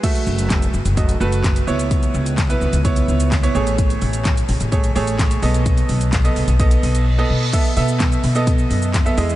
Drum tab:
CC |x---------------|----------------|----------------|----------------|
HH |xx-xxx-xxx-xxx-x|xx-xxx-xxx-xxx-x|xxoxxxoxxxoxxxox|xxoxxxoxxxox----|
SH |xxxxxxxxxxxxxxxx|xxxxxxxxxxxxxxxx|xxxxxxxxxxxxxxxx|xxxxxxxxxxxx----|
CP |----x-------x---|----x-------x---|----x-------x---|----x-----------|
SD |----o-------o---|----o-------o---|----o-------o---|----o-----------|
BD |o---o---o---o---|o---o---o---o---|o---o---o---o---|o---o---o-------|

CC |x---------------|
HH |x-o-x-o-x-o-x-o-|
SH |xxxxxxxxxxxxxxxx|
CP |----x-------x---|
SD |----o-------o---|
BD |o---o---o---o---|